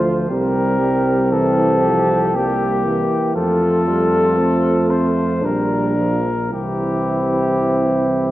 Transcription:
0.00 0.30 D2 medium
0.00 0.32 F3 medium
0.00 0.32 A3 medium
0.00 0.27 F4 medium
0.30 3.04 C2 medium
0.30 0.79 G3 medium
0.30 2.36 C4 medium
0.30 1.29 G4 soft
0.30 1.34 A#4 medium
0.79 1.34 G3 medium
1.31 1.85 E3 medium
1.31 3.35 G4 medium
1.31 2.37 A4 medium
1.84 2.34 F3 medium
2.35 2.87 G3 medium
2.35 3.34 A#3 medium
2.35 3.35 G4 medium
2.85 3.37 E3 medium
3.34 5.45 F2 medium
3.34 3.89 F3 medium
3.34 4.39 A3 soft
3.34 5.40 F4 medium
3.34 4.92 A4 medium
3.87 4.41 G3 medium
4.37 5.46 A3 soft
4.37 4.89 C4 soft
4.89 5.44 C4 soft
4.89 5.47 C5 medium
5.41 6.53 A#1 soft
5.41 5.97 G3 soft
5.41 6.20 D4 soft
5.41 6.22 D4 soft
5.45 6.53 A#4 medium
5.98 6.32 F3 soft
6.50 8.31 C2 soft
6.50 8.31 E3 soft
6.50 8.31 C4 soft
6.50 8.31 E4 soft
6.50 8.31 G4 medium

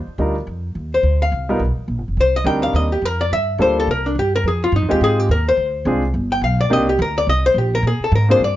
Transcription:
0.07 muted upright bass stroke soft
0.18 0.46 D2 medium
0.18 0.34 G3 medium
0.18 0.34 D4 medium
0.18 0.34 D#4 medium
0.18 0.35 F4 medium
0.18 0.35 A#4 medium
0.47 0.74 F2 medium
0.75 1.02 D#2 medium
0.94 1.20 C5 medium
1.03 1.31 D2 medium
1.22 1.58 F5 medium
1.32 1.59 C2 medium
1.49 1.59 G3 medium
1.49 1.59 B3 medium
1.49 1.59 D#4 medium
1.49 1.60 F4 medium
1.49 1.60 A#4 medium
1.59 1.76 B1 medium
1.77 muted upright bass stroke soft
1.88 1.98 A#1 medium
1.98 2.07 G1 medium
2.08 2.16 F1 medium
2.17 2.44 C2 medium
2.17 2.35 C5 medium
2.36 2.46 D#5 loud
2.44 2.72 D2 loud
2.44 2.87 G3 medium
2.44 2.87 C4 medium
2.44 2.88 D4 medium
2.44 2.88 D#4 medium
2.44 2.88 A#4 medium
2.44 2.63 G5 medium
2.63 2.74 F5 loud
2.73 3.01 D#2 medium
2.73 2.91 D#5 medium
2.92 3.05 G4 medium
3.02 3.29 F2 medium
3.02 3.20 A#4 medium
3.21 3.31 D5 medium
3.31 3.58 G2 medium
3.31 3.58 E5 loud
3.58 3.86 D2 medium
3.58 3.87 G3 medium
3.58 3.87 A#3 medium
3.58 3.87 D4 medium
3.58 3.88 F4 medium
3.58 3.88 A4 medium
3.58 3.77 C5 medium
3.80 3.89 A4 medium
3.87 4.15 C2 medium
3.87 4.06 A#4 medium
4.06 4.16 D4 medium
4.15 4.43 G2 medium
4.15 4.34 G4 medium
4.36 4.45 A#4 loud
4.44 4.71 F2 medium
4.48 4.62 G#4 medium
4.64 4.73 F4 medium
4.72 4.82 G2 loud
4.72 4.91 D#4 medium
4.82 4.91 F2 medium
4.89 5.00 D#2 medium
4.89 5.26 G#3 medium
4.89 5.26 C4 medium
4.89 5.27 D#4 medium
4.89 5.27 F4 medium
4.89 5.27 G4 medium
4.89 5.01 G4 medium
5.01 5.28 G#2 medium
5.01 5.20 G#4 medium
5.20 5.29 G4 medium
5.29 5.56 D#2 medium
5.29 5.47 A#4 medium
5.49 6.11 C5 medium
5.57 5.84 D2 medium
5.85 6.13 C2 loud
5.85 6.01 G#3 medium
5.85 6.01 C4 medium
5.85 6.01 D4 medium
5.85 6.02 F4 medium
5.85 6.02 G#4 medium
6.14 6.41 G1 medium
6.32 6.42 G5 medium
6.41 6.69 B1 medium
6.41 6.60 F5 medium
6.61 6.71 D5 medium
6.70 6.98 C2 medium
6.70 6.86 A#3 medium
6.70 6.86 C4 medium
6.70 6.86 D4 medium
6.70 6.86 D#4 medium
6.70 6.86 G4 medium
6.70 6.88 D#5 loud
6.89 6.99 G4 medium
6.99 7.26 D2 loud
6.99 7.17 A#4 medium
7.18 7.28 D5 loud
7.27 7.54 C2 medium
7.27 7.45 D#5 loud
7.46 7.56 C5 loud
7.54 7.82 A#1 medium
7.54 7.74 G4 medium
7.75 7.85 A#4 loud
7.83 7.99 A#2 medium
7.87 8.02 G#4 medium
8.00 8.13 A4 medium
8.00 muted upright bass stroke soft
8.12 8.39 G#2 loud
8.12 8.30 A#4 medium
8.29 8.39 A#3 medium
8.29 8.39 C4 medium
8.29 8.40 D4 medium
8.29 8.40 F4 medium
8.29 8.40 G#4 medium
8.29 8.41 C5 loud
8.39 8.56 G2 medium
8.44 8.56 D5 loud

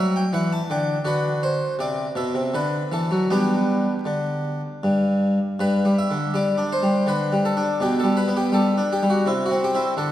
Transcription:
0.00 0.23 F#3 medium
0.00 0.27 D4 soft
0.00 0.15 E5 medium
0.16 0.33 G5 medium
0.33 0.59 E3 medium
0.33 0.51 F#5 medium
0.53 0.70 A5 medium
0.70 0.96 D3 medium
0.70 1.06 G5 medium
1.05 1.58 D3 medium
1.05 1.75 F#4 soft
1.05 1.43 B4 medium
1.43 1.74 C5 medium
1.79 2.06 C3 medium
1.79 2.11 D5 medium
2.16 2.33 B2 medium
2.16 2.54 E5 medium
2.35 2.52 C3 medium
2.54 2.81 D3 soft
2.54 2.92 B4 medium
2.92 3.09 E3 medium
2.92 3.24 A4 medium
3.11 3.29 F#3 soft
3.30 3.85 G3 soft
3.30 3.92 B3 soft
3.30 3.92 D4 soft
3.30 4.95 G4 medium
4.05 4.60 D3 soft
4.83 5.37 G2 soft
5.59 5.84 G2 medium
5.59 5.92 B4 loud
5.85 6.11 G3 soft
5.99 6.35 E5 loud
6.11 6.36 D3 soft
6.34 6.60 G3 soft
6.34 6.72 D5 medium
6.58 6.84 D4 medium
6.72 7.09 C5 medium
6.83 7.09 G3 soft
7.06 7.33 D3 medium
7.06 7.39 B4 medium
7.32 7.58 G3 soft
7.45 7.76 A4 medium
7.57 7.82 D4 medium
7.81 8.05 B2 medium
7.81 8.00 G4 loud
8.00 8.30 G3 soft
8.00 8.18 A4 medium
8.17 8.36 B4 loud
8.28 8.55 B3 medium
8.37 8.55 G4 loud
8.52 8.79 G3 medium
8.52 8.91 A4 loud
8.77 9.04 D4 medium
8.93 9.10 G4 loud
9.03 9.27 G3 medium
9.10 9.28 F#4 medium
9.26 9.50 C3 medium
9.26 9.46 E4 loud
9.46 9.64 F#4 medium
9.51 9.73 C4 medium
9.64 10.00 G4 loud
9.75 9.92 C4 medium
9.75 9.92 E4 medium
9.97 10.12 D3 medium
9.97 10.12 A4 loud

